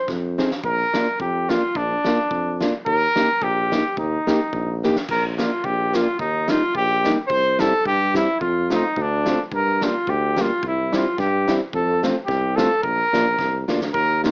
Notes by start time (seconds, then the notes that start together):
0.08 F2, kick, snare
0.38 C4 D#4 G#4, snare
0.51 snare
0.64 A#1 A#4, kick
0.94 A#3 D4 F4, snare
1.20 F2 G4, kick
1.49 A#3 D4 F4, snare
1.75 A#1 D4, kick
2.04 A#3 D4 F4, snare
2.31 F2, kick
2.61 A#3 D4 F4, snare
2.86 D#2 A#4, kick
3.16 A#3 D#4 G4, snare
3.42 A#1 G4, kick
3.72 A#3 D#4 G4, snare
3.97 D#2 D#4, kick
4.27 A#3 D#4 G4, snare
4.53 A#1, kick
4.83 A#3 D#4 G4, snare
4.96 snare
5.08 A#1 A#4, kick, crash
5.38 A#3 D4 F4, snare, hi-hat pedal
5.64 A#1 G4, kick
5.93 A#3 D4 F4, snare, hi-hat pedal
6.19 D#2 D#4, kick
6.48 G3 A#3 D#4 F4, snare, hi-hat pedal
6.75 A#1 G4, kick
7.04 G3 A#3 D#4, snare, hi-hat pedal
7.27 C2 C5, kick
7.59 G3 C4 E4 A4, snare, hi-hat pedal
7.85 G2 G4, kick
8.14 G3 C4 E4, snare, hi-hat pedal
8.40 F2 F4, kick
8.70 A3 C4 D#4 F4, snare, hi-hat pedal
8.96 D2, kick
9.01 D4
9.26 A3 C4 F4, snare, hi-hat pedal
9.52 G2 A#4, kick
9.81 G3 A#3 D4 F4, snare, hi-hat pedal
10.07 D2 G4, kick
10.36 G3 A#3 D4, snare, hi-hat pedal
10.41 F4
10.63 C2, kick
10.67 E4
10.92 G3 C4 E4 F4, snare, hi-hat pedal
11.18 G2 G4, kick, snare
11.48 G3 C4 E4, snare, hi-hat pedal
11.73 F2 A4, kick
12.03 A3 C4 F4, snare, hi-hat pedal
12.26 C2 G4, kick, snare
12.56 A3 C4 F4 A4, snare, hi-hat pedal
12.83 A#1 A#4, kick
13.13 A#1 A#3 D4 F4, snare, hi-hat pedal
13.39 C2, kick, snare
13.68 D2 A#3 D4 F4, snare, hi-hat pedal
13.81 snare
13.94 D#2 A#4, kick
14.24 A#3 D#4 F4 F#4, snare, hi-hat pedal